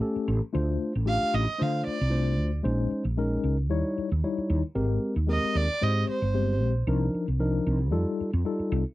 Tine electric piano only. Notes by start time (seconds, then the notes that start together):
0.01 A3 C#4 G4 A4
0.53 A3 D4 F4 C5
1.05 A3 D4 F4 G4
1.59 A3 D4 F4 C5
2.10 A3 D4 F4 C5
2.63 G#3 C#4 D#4 C5
3.17 G#3 C#4 D#4 A#4
3.70 G3 D#4 E4 C#5
4.24 G3 D#4 E4 C#5
4.75 G#3 C4 G4 A#4
5.27 G#3 C4 G4 A#4
5.82 G#3 C4 G4 C5
6.34 G#3 C4 G4 C5
6.87 F3 D4 D#4 A#4
7.39 F3 D4 D#4 A#4
7.91 G3 D#4 F4 A4
8.45 G3 D#4 F4 A4